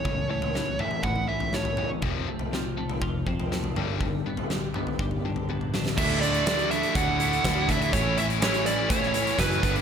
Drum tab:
CC |----------------|----------------|----------------|x---------------|
HH |----------------|----------------|----------------|--xxxxxxx-xxx-xx|
SD |----o-------o---|----o-------o---|----o---------oo|----o-------o---|
T1 |----------------|----------------|------------o---|----------------|
T2 |------o-------o-|--------------o-|------o------o--|----------------|
FT |o--o---ooo-o-oo-|o--o---oo--o-oo-|o--o---ooo-o----|----------------|
BD |o-------o-------|o-------o-o-----|o-------o-------|o-------o---o-o-|

CC |----------------|
HH |x-xxxxx-x-xxxxxx|
SD |----oo---o--o-o-|
T1 |----------------|
T2 |----------------|
FT |----------------|
BD |o-------o---o-o-|